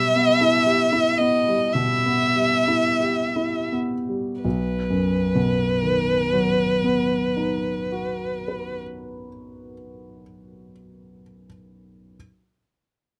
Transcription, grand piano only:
0.00 1.71 B2 soft
0.00 0.30 G3 soft
0.16 0.55 B3 soft
0.41 0.81 E4 soft
0.66 1.08 G4 soft
0.92 1.35 E4 soft
1.20 1.63 B3 soft
1.48 1.93 G3 soft
1.75 4.40 B2 soft
2.06 2.54 B3 soft
2.35 2.86 G3 soft
2.68 3.20 E4 soft
3.00 3.56 G4 soft
3.36 3.94 E4 soft
3.72 4.30 B3 soft
4.09 4.44 G3 soft
4.45 8.83 B1 soft
4.90 9.29 F#2 soft
5.35 9.74 B2 soft
5.82 10.21 D#3 soft
6.33 10.71 F#3 soft
6.84 11.22 B3 soft
7.37 11.45 D#4 soft
7.92 11.45 F#4 soft
8.48 11.45 B4 soft

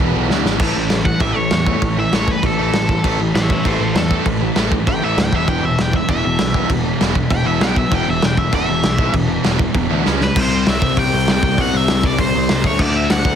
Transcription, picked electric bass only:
0.00 0.13 E1 medium
0.15 0.29 B1 medium
0.30 0.44 D2 loud
0.45 0.59 G#1 medium
0.60 0.72 A1 loud
0.76 0.88 A1 medium
0.91 1.14 A1 medium
1.20 1.32 A1 loud
1.37 1.48 A1 medium
1.52 1.75 E2 medium
1.82 2.05 A1 medium
2.13 2.36 A1 medium
2.43 2.55 A1 loud
2.58 2.70 A1 medium
2.73 2.96 A1 medium
3.04 3.16 A1 loud
3.19 3.31 A1 loud
3.34 3.58 A1 medium
3.65 3.77 A1 medium
3.79 3.91 A1 medium
3.95 4.18 E2 medium
4.26 4.49 A1 loud
4.56 4.80 A1 medium
4.87 4.99 A1 loud
5.02 5.14 A1 medium
5.17 5.29 D2 medium
5.33 5.45 E1 medium
5.48 5.60 E1 medium
5.64 5.75 E1 loud
5.78 6.02 E1 medium
6.09 6.21 E1 medium
6.25 6.36 E1 medium
6.41 6.64 B1 loud
6.70 6.93 E1 loud
7.01 7.24 E1 medium
7.31 7.43 E1 loud
7.46 7.61 E1 medium
7.61 7.84 B1 loud
7.92 8.03 E1 loud
8.08 8.20 E1 medium
8.23 8.46 E1 loud
8.53 8.65 E1 loud
8.69 8.81 E1 medium
8.85 9.07 B1 loud
9.14 9.37 E1 loud
9.45 9.68 E1 medium
9.75 9.87 E1 loud
9.91 10.02 D2 loud
10.07 10.29 C#2 loud
10.36 10.63 C2 loud
10.68 10.81 C2 medium
10.82 10.96 C2 medium
10.97 11.11 C2 loud
11.13 11.26 C2 medium
11.29 11.42 C2 loud
11.43 11.56 C2 loud
11.58 11.71 C2 loud
11.73 11.87 C2 loud
11.90 12.03 C2 medium
12.04 12.17 C2 medium
12.19 12.32 C2 loud
12.35 12.48 C2 medium
12.50 12.63 C2 loud
12.64 12.78 D2 medium
12.79 13.06 D2 loud
13.11 13.24 D2 loud
13.25 13.35 D2 loud

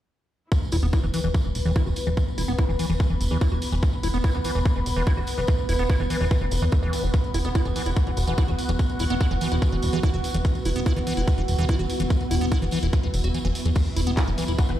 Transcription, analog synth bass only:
0.72 0.79 E1 medium
0.83 0.89 E1 medium
1.03 1.10 E1 medium
1.24 1.31 E1 medium
1.45 1.51 E1 medium
1.55 1.62 E1 medium
1.65 1.72 E1 medium
1.86 1.93 E1 medium
2.07 2.13 E1 medium
2.38 2.44 E1 medium
2.48 2.55 E1 medium
2.69 2.75 E1 medium
2.90 2.96 E1 medium
3.10 3.17 E1 medium
3.21 3.27 E1 medium
3.31 3.37 E2 medium
3.52 3.58 D1 medium
3.72 3.79 E1 medium
4.03 4.10 E1 medium
4.14 4.20 E1 medium
4.34 4.41 E1 medium
4.55 4.62 E1 medium
4.76 4.82 E1 medium
4.86 4.93 E1 medium
4.97 5.03 E1 medium
5.17 5.24 E1 medium
5.38 5.44 E1 medium
5.69 5.75 E1 medium
5.79 5.86 E1 medium
6.00 6.06 E1 medium
6.21 6.27 E1 medium
6.41 6.48 E1 medium
6.52 6.58 E1 medium
6.62 6.68 E2 medium
6.83 6.89 D1 medium
7.03 7.10 E1 medium
7.34 7.41 E1 medium
7.45 7.51 E1 medium
7.65 7.72 E1 medium
7.86 7.93 E1 medium
8.07 8.13 E1 medium
8.17 8.24 E1 medium
8.28 8.34 E1 medium
8.48 8.55 E1 medium
8.69 8.75 E1 medium
9.00 9.06 E1 medium
9.10 9.17 E1 medium
9.31 9.37 E1 medium
9.52 9.58 E1 medium
9.72 9.79 E1 medium
9.83 9.89 E1 medium
9.93 10.00 E2 medium
10.14 10.20 D1 medium
10.34 10.41 E1 medium
10.65 10.72 E1 medium
10.76 10.82 E1 medium
10.96 11.03 E1 medium
11.17 11.24 E1 medium
11.38 11.44 E1 medium
11.48 11.55 E1 medium
11.59 11.65 E1 medium
11.79 11.86 E1 medium
12.00 12.06 E1 medium
12.31 12.37 E1 medium
12.41 12.48 E1 medium
12.62 12.68 E1 medium
12.83 12.89 E1 medium
13.03 13.10 E1 medium
13.14 13.20 E1 medium
13.24 13.31 E1 medium
13.45 13.51 E1 medium
13.65 13.72 E2 medium
13.96 14.03 E1 medium
14.07 14.13 E1 medium
14.28 14.34 E1 medium
14.48 14.55 E1 medium
14.69 14.75 E1 medium

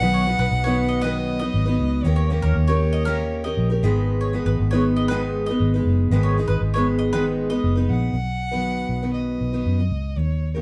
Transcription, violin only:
0.00 1.04 F#5 loud
1.03 2.05 D#5 medium
2.04 2.42 C#5 medium
2.44 3.79 C#5 medium
7.90 9.13 F#5 loud
9.14 10.19 D#5 medium
10.18 10.54 C#5 medium
10.55 10.62 C#5 medium

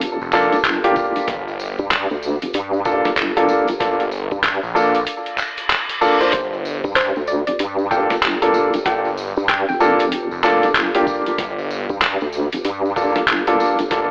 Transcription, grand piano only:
0.33 0.55 A#3 medium
0.33 0.54 D4 medium
0.33 0.54 F4 medium
0.33 0.55 A4 loud
0.84 2.83 A#3 medium
0.84 2.83 D4 medium
0.84 2.83 F4 medium
0.84 2.83 G4 medium
2.86 3.07 A#3 medium
2.86 3.07 D4 medium
2.86 3.07 F4 medium
2.86 3.07 A4 loud
3.37 3.65 A#3 medium
3.37 3.65 D4 medium
3.37 3.65 F4 medium
3.37 3.65 A4 medium
3.80 4.02 A#3 medium
3.80 4.02 D4 medium
3.80 4.02 F4 medium
3.80 4.02 A4 medium
4.75 4.96 A#3 medium
4.75 4.96 D4 medium
4.75 4.96 F4 medium
4.75 4.96 A4 loud
6.01 6.16 A#3 medium
6.01 6.16 D4 medium
6.01 6.16 F4 medium
6.01 6.16 A4 medium
6.21 6.36 A#3 medium
6.21 6.36 D4 medium
6.21 6.36 F4 medium
6.21 6.36 C5 medium
7.91 8.12 A#3 medium
7.91 8.12 D4 medium
7.91 8.12 F4 medium
7.91 8.12 A4 loud
8.42 8.71 A#3 medium
8.42 8.71 D4 medium
8.42 8.71 F4 medium
8.42 8.71 A4 medium
8.86 9.07 A#3 medium
8.86 9.07 D4 medium
8.86 9.07 F4 medium
8.86 9.07 A4 medium
9.80 10.02 A#3 medium
9.80 10.02 D4 medium
9.80 10.02 F4 medium
9.80 10.02 A4 loud
10.44 10.65 A#3 loud
10.44 10.65 D4 medium
10.44 10.65 F4 medium
10.44 10.65 A4 loud
10.95 12.93 A#3 medium
10.95 12.93 D4 medium
10.95 12.93 F4 medium
10.95 12.93 G4 medium
12.96 13.18 A#3 medium
12.96 13.18 D4 medium
12.96 13.18 F4 medium
12.96 13.18 A4 medium
13.47 13.76 A#3 medium
13.47 13.76 D4 medium
13.47 13.76 F4 medium
13.47 13.76 A4 medium
13.91 14.11 A#3 medium
13.91 14.11 D4 medium
13.91 14.11 F4 medium
13.91 14.11 A4 medium

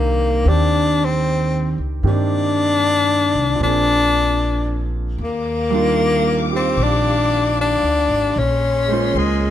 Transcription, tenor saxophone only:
0.00 0.50 A#3 medium
0.49 1.06 D4 loud
1.05 1.80 C4 medium
2.08 3.59 D4 medium
3.63 4.90 D4 medium
5.24 6.50 A#3 medium
6.56 6.84 C4 medium
6.83 7.59 D4 medium
7.61 8.40 D4 medium
8.39 9.19 C#4 medium
9.17 9.50 G#3 medium

